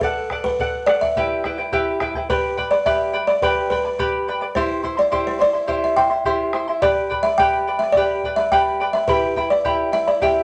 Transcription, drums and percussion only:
0.01 bombo low
0.30 bombo rim, bombo low
0.45 bombo low
0.59 bombo low
0.87 bombo rim
1.02 bombo low
1.16 bombo low
1.44 bombo rim, bombo low
1.72 bombo low
2.00 bombo rim, bombo low
2.14 bombo low
2.29 bombo low
2.58 bombo low
2.86 bombo low
3.42 bombo low
3.71 bombo low
3.99 bombo low
4.55 bombo low
4.84 bombo low
5.12 bombo low
5.68 bombo low
5.96 bombo low
6.25 bombo low
6.53 bombo rim
6.82 bombo low
7.11 bombo low
7.39 bombo low
7.95 bombo low
8.23 bombo low
8.51 bombo low
9.08 bombo low
9.36 bombo low
9.65 bombo low
10.21 bombo low

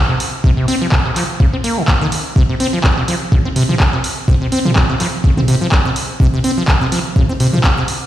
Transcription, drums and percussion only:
0.20 open hi-hat
0.44 kick
0.68 open hi-hat
0.92 kick, clap
1.16 clap, open hi-hat
1.40 kick
1.64 open hi-hat
1.88 kick, clap
2.12 open hi-hat
2.36 kick
2.60 open hi-hat
2.84 kick, clap
3.08 open hi-hat
3.32 kick, mid tom
3.56 open hi-hat
3.69 mid tom
3.80 kick, clap
4.04 open hi-hat
4.28 kick
4.52 open hi-hat
4.65 mid tom
4.76 kick, clap, mid tom
5.00 clap, open hi-hat
5.24 kick
5.37 mid tom
5.48 open hi-hat
5.72 kick, clap
5.96 open hi-hat
6.20 kick
6.44 open hi-hat
6.68 kick, clap
6.92 open hi-hat
7.16 kick, mid tom
7.40 open hi-hat
7.53 mid tom
7.64 kick, clap
7.88 open hi-hat

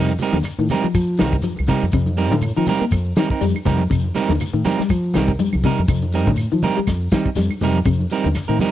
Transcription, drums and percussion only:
0.09 snare, shekere
0.18 closed hi-hat, low conga, shekere
0.33 snare, high conga, shekere
0.43 snare, closed hi-hat, claves, shekere
0.59 shekere
0.69 closed hi-hat, high conga, low conga, shekere
0.84 shekere
0.95 kick, closed hi-hat, claves, shekere
1.07 shekere
1.17 snare, closed hi-hat, high conga, claves, shekere
1.32 kick, shekere
1.42 closed hi-hat, high conga, shekere
1.56 high conga, claves, shekere
1.67 kick, closed hi-hat, low conga, shekere
1.80 shekere
1.91 kick, closed hi-hat, claves, shekere
2.06 closed hi-hat, high conga, shekere
2.17 snare, closed hi-hat, shekere
2.30 snare, high conga, shekere
2.41 closed hi-hat, low conga, claves, shekere
2.55 closed hi-hat, shekere
2.66 closed hi-hat, high conga, low conga, shekere
2.80 closed hi-hat, shekere
2.91 kick, closed hi-hat, claves, shekere
3.05 shekere
3.16 snare, closed hi-hat, high conga, claves, shekere
3.30 kick, shekere
3.41 closed hi-hat, high conga, shekere
3.54 closed hi-hat, high conga, claves, shekere
3.65 kick, closed hi-hat, high conga, low conga, shekere
3.78 closed hi-hat, high conga, shekere
3.91 kick, closed hi-hat, claves, shekere
4.04 high conga, shekere
4.15 snare, closed hi-hat, low conga, shekere
4.29 snare, high conga, shekere
4.40 closed hi-hat, low conga, claves, shekere
4.55 shekere
4.65 closed hi-hat, high conga, low conga, shekere
4.78 snare, shekere
4.89 kick, closed hi-hat, claves, shekere
5.03 shekere
5.14 snare, closed hi-hat, high conga, claves, shekere
5.27 kick, shekere
5.39 closed hi-hat, high conga, shekere
5.52 high conga, claves, shekere
5.63 kick, closed hi-hat, low conga, shekere
5.77 high conga, shekere
5.88 kick, closed hi-hat, claves, shekere
6.02 closed hi-hat, high conga, shekere
6.12 snare, closed hi-hat, shekere
6.26 kick, high conga, shekere
6.36 closed hi-hat, claves, shekere
6.51 closed hi-hat, shekere
6.62 open hi-hat, high conga, low conga, shekere
6.76 closed hi-hat, shekere
6.87 kick, snare, closed hi-hat, claves, shekere
7.00 shekere
7.11 kick, snare, closed hi-hat, high conga, claves, shekere
7.25 kick, shekere
7.35 snare, closed hi-hat, high conga, shekere
7.50 closed hi-hat, high conga, claves, shekere
7.61 open hi-hat, high conga, low conga, shekere
7.74 closed hi-hat, high conga, shekere
7.85 kick, closed hi-hat, claves, shekere
7.99 high conga, shekere
8.10 closed hi-hat, shekere
8.24 high conga, shekere
8.34 snare, closed hi-hat, claves, shekere
8.50 shekere
8.59 closed hi-hat, high conga, low conga, shekere

